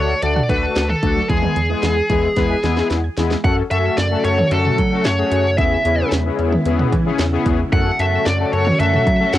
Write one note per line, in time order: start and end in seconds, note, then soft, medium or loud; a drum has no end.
0.00 0.15 D2 loud
0.00 0.14 A3 medium
0.00 0.14 D4 medium
0.00 0.14 F#4 medium
0.00 0.14 A4 medium
0.00 0.22 C#5 medium
0.22 0.41 D2 loud
0.22 0.34 D3 medium
0.22 0.41 A3 medium
0.22 0.41 D4 medium
0.22 0.41 F#4 medium
0.22 0.41 A4 medium
0.22 0.48 D5 loud
0.22 closed hi-hat medium
0.36 0.47 F#5 loud
0.36 mid tom medium
0.49 0.68 D2 loud
0.49 0.60 D3 medium
0.49 0.85 A3 medium
0.49 0.86 D4 medium
0.49 0.85 F#4 medium
0.49 0.85 A4 medium
0.49 0.89 B4 medium
0.49 kick medium
0.49 closed hi-hat medium
0.63 0.74 A5 medium
0.76 0.95 D2 loud
0.76 snare loud
0.76 closed hi-hat medium
0.90 1.29 A4 medium
0.90 1.01 F#6 medium
0.90 mid tom medium
1.03 1.22 D2 loud
1.03 1.14 D3 medium
1.03 1.21 A3 medium
1.03 1.21 D4 medium
1.03 1.21 F#4 medium
1.03 1.21 A4 medium
1.03 kick loud
1.03 closed hi-hat medium
1.16 1.27 F#3 medium
1.30 1.48 E2 loud
1.30 1.41 E3 medium
1.30 1.57 G#3 medium
1.30 1.57 B3 medium
1.30 1.57 E4 medium
1.30 1.57 G#4 medium
1.30 2.87 G#4 medium
1.30 kick loud
1.30 closed hi-hat medium
1.43 1.54 G#3 medium
1.43 mid tom medium
1.56 1.75 E2 loud
1.56 1.68 E3 medium
1.56 closed hi-hat medium
1.70 1.97 G#3 medium
1.70 1.81 B3 medium
1.70 1.97 B3 medium
1.70 1.97 E4 medium
1.70 1.97 G#4 medium
1.83 2.02 E2 loud
1.83 1.94 E3 medium
1.83 snare loud
1.83 closed hi-hat medium
1.97 2.08 G#4 medium
2.10 2.29 E2 loud
2.10 2.21 E3 medium
2.10 2.28 G#3 medium
2.10 2.28 B3 medium
2.10 2.28 E4 medium
2.10 2.28 G#4 loud
2.10 kick medium
2.10 closed hi-hat medium
2.37 2.56 E2 loud
2.37 2.48 E3 medium
2.37 2.55 G#3 medium
2.37 2.55 B3 medium
2.37 2.55 E4 medium
2.37 2.55 B4 loud
2.37 kick loud
2.37 snare medium
2.37 closed hi-hat medium
2.50 2.61 G#5 loud
2.64 2.82 E2 loud
2.64 2.75 E3 medium
2.64 3.00 G#3 medium
2.64 3.00 B3 medium
2.64 3.00 E4 medium
2.64 3.00 G#4 loud
2.64 snare medium
2.64 closed hi-hat medium
2.77 2.88 B5 medium
2.77 snare medium
2.90 3.09 E2 loud
2.90 snare medium
2.90 closed hi-hat medium
3.04 3.15 G#6 medium
3.17 3.36 E2 loud
3.17 3.28 E3 medium
3.17 3.35 G#3 medium
3.17 3.35 B3 medium
3.17 3.35 E4 medium
3.17 3.35 G#4 medium
3.17 snare loud
3.17 closed hi-hat medium
3.31 3.42 G#3 medium
3.31 snare medium
3.44 3.63 F#2 loud
3.44 5.56 C#3 medium
3.44 5.56 F#3 medium
3.44 5.56 A3 medium
3.44 3.62 A3 medium
3.44 3.62 C#4 medium
3.44 5.56 F#4 medium
3.44 3.62 F#4 medium
3.44 3.62 A4 medium
3.44 3.51 F#5 loud
3.44 kick loud
3.44 closed hi-hat medium
3.71 3.90 F#2 loud
3.71 3.98 A3 medium
3.71 3.98 C#4 medium
3.71 3.98 F#4 medium
3.71 3.98 A4 medium
3.71 3.97 E5 loud
3.71 closed hi-hat medium
3.98 4.16 F#2 loud
3.98 4.24 D5 loud
3.98 snare loud
3.98 closed hi-hat medium
4.11 4.38 A3 medium
4.11 4.38 C#4 medium
4.11 4.38 F#4 medium
4.11 4.38 A4 medium
4.24 4.43 F#2 loud
4.24 4.52 C#5 medium
4.24 closed hi-hat medium
4.38 mid tom medium
4.51 4.70 F#2 loud
4.51 4.78 A3 medium
4.51 4.78 C#4 medium
4.51 4.78 F#4 medium
4.51 5.06 A4 medium
4.51 4.78 A4 medium
4.51 closed hi-hat medium
4.65 mid tom medium
4.78 5.06 F#3 medium
4.78 kick medium
4.78 closed hi-hat medium
4.91 5.10 A3 medium
4.91 5.09 C#4 medium
4.91 5.09 F#4 medium
4.91 5.10 A4 medium
5.05 5.24 F#2 loud
5.05 5.58 C#5 medium
5.05 snare loud
5.05 closed hi-hat medium
5.18 5.45 A3 medium
5.18 5.45 C#4 medium
5.18 5.45 F#4 medium
5.18 5.45 G#4 medium
5.32 5.60 F#2 loud
5.32 closed hi-hat medium
5.58 5.77 E2 loud
5.58 9.38 C#3 medium
5.58 7.71 G#3 medium
5.58 7.71 B3 medium
5.58 5.76 B3 medium
5.58 5.76 C#4 medium
5.58 7.71 E4 medium
5.58 5.76 E4 medium
5.58 5.76 G#4 medium
5.58 6.08 E5 medium
5.58 kick loud
5.58 closed hi-hat medium
5.85 6.04 E2 loud
5.85 6.12 B3 medium
5.85 6.12 C#4 medium
5.85 6.12 E4 medium
5.85 6.12 G#4 medium
5.85 closed hi-hat medium
6.12 6.31 E2 loud
6.12 snare loud
6.12 closed hi-hat medium
6.25 6.52 B3 medium
6.25 6.52 C#4 medium
6.25 6.52 E4 medium
6.25 6.52 G#4 loud
6.39 6.57 E2 loud
6.39 closed hi-hat medium
6.52 mid tom medium
6.65 6.84 E2 loud
6.65 6.93 B3 medium
6.65 6.93 C#4 medium
6.65 6.93 E4 medium
6.65 6.93 G#4 loud
6.65 closed hi-hat medium
6.79 mid tom medium
6.92 7.11 E3 loud
6.92 kick medium
6.92 closed hi-hat medium
7.06 7.24 B3 medium
7.06 7.24 C#4 medium
7.06 7.24 E4 medium
7.06 7.24 G#4 loud
7.19 7.38 E2 loud
7.19 snare loud
7.19 closed hi-hat medium
7.33 7.60 B3 medium
7.33 7.60 C#4 medium
7.33 7.60 E4 medium
7.33 7.60 G#4 loud
7.46 7.65 E2 loud
7.46 kick loud
7.46 closed hi-hat medium
7.73 7.91 F#2 loud
7.73 9.38 F#3 medium
7.73 9.38 A3 medium
7.73 7.91 A3 medium
7.73 7.91 C#4 medium
7.73 9.38 F#4 medium
7.73 7.91 F#4 medium
7.73 7.91 A4 medium
7.73 8.00 F#5 loud
7.73 kick loud
7.73 closed hi-hat medium
7.99 8.18 F#2 loud
7.99 8.27 A3 medium
7.99 8.27 C#4 medium
7.99 8.27 F#4 medium
7.99 8.27 A4 medium
7.99 8.26 E5 medium
7.99 closed hi-hat medium
8.26 8.45 F#2 loud
8.26 8.51 D5 medium
8.26 snare loud
8.26 closed hi-hat medium
8.40 8.67 A3 medium
8.40 8.67 C#4 medium
8.40 8.67 F#4 medium
8.40 8.67 A4 medium
8.53 8.72 F#2 loud
8.53 8.79 C#5 medium
8.53 closed hi-hat medium
8.67 mid tom medium
8.80 8.98 F#2 loud
8.80 9.07 A3 medium
8.80 9.07 C#4 medium
8.80 9.07 F#4 medium
8.80 9.07 A4 medium
8.80 9.35 E5 medium
8.80 closed hi-hat medium
8.94 mid tom medium
9.07 9.25 F#3 medium
9.07 kick medium
9.07 closed hi-hat medium
9.20 9.38 A3 medium
9.20 9.38 C#4 medium
9.20 9.38 F#4 medium
9.20 9.38 A4 medium
9.33 9.38 F#2 loud
9.33 9.38 F#5 loud
9.33 snare loud
9.33 closed hi-hat medium